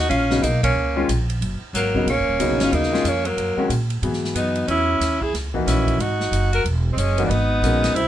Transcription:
0.09 upright bass A#1, alto saxophone C#4, tenor saxophone F4, ride
0.30 grand piano C#3 F#3 B3 D#4, snare
0.42 upright bass B1, alto saxophone A#3, tenor saxophone D#4, hi-hat pedal, ride
0.63 alto saxophone A#3, tenor saxophone C#4, kick, ride
0.75 upright bass C#2
0.96 grand piano D#3 G#3 C#4 F4
1.09 upright bass A#1, hi-hat pedal, ride
1.30 ride
1.41 upright bass F#1, ride
1.61 muted upright bass stroke
1.73 upright bass G#1, alto saxophone F#3, tenor saxophone A#3, hi-hat pedal, ride
1.94 grand piano C#3 F#3 B3 D#4, kick
2.06 upright bass A#1, alto saxophone A#3, tenor saxophone C#4, ride
2.17 upright bass F#1
2.28 upright bass D#1
2.39 upright bass C#2, grand piano C#3 F#3 B3 D#4, hi-hat pedal, ride
2.51 upright bass A#1
2.60 upright bass F#1, alto saxophone C#4, tenor saxophone F4, snare, ride
2.72 upright bass D#2, alto saxophone A#3, tenor saxophone D#4, ride
2.83 snare
2.92 grand piano D#3 G#3 C#4 F4, snare
3.04 upright bass F2, alto saxophone A#3, hi-hat pedal, ride
3.08 tenor saxophone C#4
3.25 alto saxophone F#3, tenor saxophone A#3, ride
3.37 upright bass F#2, ride
3.57 grand piano D#3 G#3 C#4 F#4, muted upright bass stroke
3.69 upright bass A#2, hi-hat pedal, ride
3.90 ride
4.02 upright bass G#2, grand piano E3 F#3 B3 G#4, ride
4.13 snare
4.25 snare
4.35 upright bass F#2, alto saxophone B3, tenor saxophone D#4, hi-hat pedal, ride
4.55 ride
4.68 upright bass E2, alto saxophone C#4, tenor saxophone E4, ride
5.00 upright bass D#2, snare, hi-hat pedal, ride
5.20 alto saxophone E4, tenor saxophone G#4, kick
5.33 upright bass C#2, snare, ride
5.54 grand piano E3 A#3 D#4 F#4, kick
5.66 upright bass A#1, alto saxophone C#4, tenor saxophone E4, snare, hi-hat pedal, ride
5.87 kick, ride
5.98 upright bass G#1, alto saxophone D#4, tenor saxophone F#4, ride
6.20 snare
6.31 upright bass F#1, hi-hat pedal, ride
6.53 alto saxophone F#4, tenor saxophone A#4, ride
6.64 upright bass E1, ride
6.92 upright bass F#1, alto saxophone G#3, tenor saxophone C4
6.97 alto saxophone G#3, tenor saxophone C#4, hi-hat pedal, ride
7.18 grand piano E3 A#3 D#4 F#4, ride
7.25 alto saxophone A#3, tenor saxophone D4
7.29 upright bass G#1, alto saxophone B3, tenor saxophone D#4, ride
7.62 upright bass A#1, grand piano G#3 C#4 F#4 A#4, hi-hat pedal, ride
7.84 snare, ride
7.94 upright bass C2, alto saxophone C4, tenor saxophone E4, ride

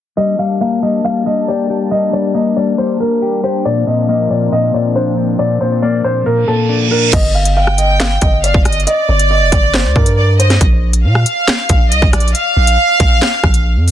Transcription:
0.17 clean electric guitar G3, analog synth pad G3 A#3 D4 A5, grand piano D#5
0.39 clean electric guitar G3, grand piano F5
0.61 clean electric guitar A#3, grand piano F5
0.83 clean electric guitar G3, grand piano D#5
1.04 clean electric guitar G3, grand piano F5
1.26 clean electric guitar G3, grand piano D#5
1.48 clean electric guitar G4, grand piano D5
1.70 clean electric guitar G4
1.91 clean electric guitar G3, grand piano D#5
2.13 clean electric guitar G3, grand piano D5
2.35 clean electric guitar A#3, grand piano D#5
2.56 clean electric guitar G3, grand piano D5
2.78 clean electric guitar G3, grand piano C5
3.00 clean electric guitar G3, grand piano A#4
3.22 clean electric guitar G4
3.44 clean electric guitar G4, grand piano C5
3.65 clean electric guitar A#2, analog synth pad F3 A#3 C4, grand piano D5
3.87 clean electric guitar A#2, grand piano D#5
4.09 clean electric guitar A#3, grand piano D#5
4.30 clean electric guitar A#2, grand piano D5
4.52 clean electric guitar A#2, grand piano D#5
4.74 clean electric guitar A#2, grand piano D5
4.96 clean electric guitar D4, grand piano C5
5.18 clean electric guitar D4
5.39 clean electric guitar A#2, grand piano D5
5.61 clean electric guitar A#2, grand piano C5
5.82 clean electric guitar A#3, grand piano D5
6.04 clean electric guitar A#2, grand piano C5
6.26 clean electric guitar A#2, grand piano A#4, reverse cymbal
6.48 clean electric guitar A#2, grand piano A4
6.69 clean electric guitar D4
6.91 clean electric guitar D4, grand piano A#4
7.13 808-style bass G1, grand piano D#5, kick, closed hi-hat, crash
7.35 grand piano F5
7.45 closed hi-hat
7.57 grand piano F5, violin section G5
7.67 cross-stick
7.78 grand piano D#5, closed hi-hat
8.00 grand piano F5, snare, clap, closed hi-hat
8.21 808-style bass G1, grand piano D#5, kick, closed hi-hat
8.43 grand piano D5, violin section F5, closed hi-hat
8.54 808-style bass G1, kick
8.65 808-style bass G1, violin section D#5, cross-stick, closed hi-hat
8.72 closed hi-hat
8.80 closed hi-hat
8.87 violin section D5, grand piano D#5, closed hi-hat
9.09 808-style bass G1, grand piano D5
9.19 closed hi-hat
9.30 grand piano D#5
9.41 808-style bass F1
9.52 808-style bass G1, grand piano D5, kick, closed hi-hat
9.74 grand piano C5, snare, clap
9.85 808-style bass D2
9.96 808-style bass G2, grand piano A#4, kick
10.06 closed hi-hat
10.18 violin section D5
10.39 grand piano C5, violin section D#5, closed hi-hat
10.50 snare, closed hi-hat
10.61 808-style bass A#1, kick, closed hi-hat
10.93 closed hi-hat
11.04 808-style bass A#2, violin section F5
11.15 cross-stick
11.26 closed hi-hat
11.48 snare, clap, closed hi-hat
11.69 808-style bass A#1, kick, closed hi-hat
11.91 808-style bass C2, violin section D#5, closed hi-hat
12.02 808-style bass A#1, kick
12.13 808-style bass A#1, violin section D5, cross-stick, closed hi-hat
12.20 closed hi-hat
12.28 closed hi-hat
12.35 violin section F5, closed hi-hat
12.57 808-style bass A#1
12.67 closed hi-hat
13.00 808-style bass A#1, kick, closed hi-hat
13.22 snare, clap
13.44 808-style bass A#1, kick, cross-stick
13.54 closed hi-hat
13.76 808-style bass F2
13.88 open hi-hat

